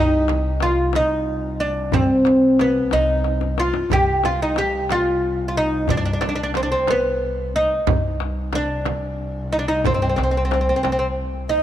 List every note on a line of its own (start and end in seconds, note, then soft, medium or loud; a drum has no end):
0.00 0.99 C2 medium
0.00 3.90 C2 medium
0.00 0.62 D#4 medium
0.28 tombak tek medium
0.28 frame drum medium
0.60 0.96 F4 medium
0.60 tombak tek medium
0.60 frame drum medium
0.93 1.63 D#4 medium
0.93 tombak tek medium
0.93 frame drum medium
1.60 1.93 D4 medium
1.92 2.19 G2 medium
1.92 2.61 C4 medium
1.92 tombak dum medium
1.92 frame drum medium
2.25 2.78 C2 medium
2.25 tombak tek medium
2.25 frame drum medium
2.59 2.94 B3 medium
2.59 tombak tek medium
2.59 frame drum medium
2.91 3.70 C2 medium
2.91 3.59 D#4 medium
2.91 tombak tek medium
2.91 frame drum medium
3.24 tombak tek soft
3.41 tombak ka medium
3.58 3.92 F4 medium
3.58 tombak tek medium
3.74 tombak ka medium
3.90 7.86 C2 medium
3.90 4.94 C2 medium
3.90 4.25 G4 medium
3.90 tombak dum medium
3.90 frame drum medium
4.24 4.42 F4 medium
4.24 tombak tek medium
4.24 frame drum medium
4.42 4.58 D#4 medium
4.56 4.91 G4 medium
4.56 tombak tek medium
4.56 frame drum medium
4.89 5.47 F4 medium
4.89 tombak tek medium
4.89 frame drum medium
5.48 5.56 F4 medium
5.56 5.90 D#4 medium
5.56 tombak ka soft
5.88 6.15 G2 medium
5.88 5.96 D4 medium
5.88 tombak dum medium
5.88 frame drum medium
5.97 6.04 D4 medium
6.05 6.12 D4 medium
6.13 6.20 D4 medium
6.21 6.74 C2 medium
6.21 6.28 D4 medium
6.21 tombak tek medium
6.21 frame drum medium
6.29 6.34 D4 medium
6.35 6.42 D4 medium
6.43 6.50 D4 medium
6.54 6.62 C4 medium
6.54 tombak tek medium
6.54 frame drum medium
6.63 6.69 D4 medium
6.72 6.90 C4 medium
6.87 7.66 C2 medium
6.87 7.51 B3 medium
6.87 tombak tek medium
6.87 frame drum medium
7.54 8.55 D#4 medium
7.54 tombak ka soft
7.87 11.63 C2 medium
7.87 8.91 C2 medium
7.87 frame drum medium
7.87 tombak dum medium
8.20 tombak tek medium
8.53 9.52 D4 medium
8.53 tombak tek medium
8.53 frame drum medium
8.85 tombak tek medium
8.85 frame drum medium
9.51 9.58 D#4 medium
9.51 tombak ka soft
9.59 9.66 D4 medium
9.68 9.86 D#4 medium
9.84 10.11 G2 medium
9.84 9.93 C4 medium
9.84 tombak dum medium
9.84 frame drum medium
9.94 10.01 C4 soft
10.02 10.08 C4 medium
10.09 10.15 C4 soft
10.16 10.70 C2 medium
10.16 10.22 C4 soft
10.16 tombak tek medium
10.16 frame drum medium
10.23 10.30 C4 soft
10.31 10.36 C4 soft
10.37 10.44 C4 soft
10.45 10.52 C4 soft
10.51 10.60 C4 soft
10.51 tombak tek medium
10.51 frame drum medium
10.61 10.68 C4 soft
10.69 10.75 C4 soft
10.76 10.82 C4 soft
10.83 11.62 C2 medium
10.83 10.90 C4 soft
10.83 tombak tek medium
10.83 frame drum medium
10.92 10.98 C4 medium
10.99 11.06 C4 soft
11.49 11.63 D#4 medium
11.49 11.63 D#5 medium